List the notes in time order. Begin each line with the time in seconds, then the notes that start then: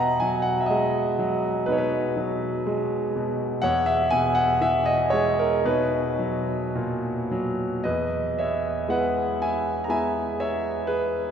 Already playing: B2 D#5 F#5 A#5
0.20 F#3 G#5
0.42 F#5
0.60 E5
0.66 D#5
0.70 G#3
1.19 F#3
1.66 B2 D#4 B4
1.72 C#5
1.78 B4
2.17 F#3
2.67 G#3
3.16 B2
3.62 E2 C#5 F#5
3.86 E5
4.11 B2 G#5
4.35 F#5
4.61 E3 E5
4.86 D#5
5.10 G#3 C#5
5.39 A#4
5.65 B2 D#4 B4
6.19 F#3
6.75 A#2
7.31 F#3
7.84 E2 B4 D#5
8.39 C#5 E5
8.88 G#3 B3 E4 B4 F#5
9.42 E5 G#5
9.84 G#3 A#5
9.89 B3 E4 E5 G#5
10.40 C#5 E5
10.87 G#4 B4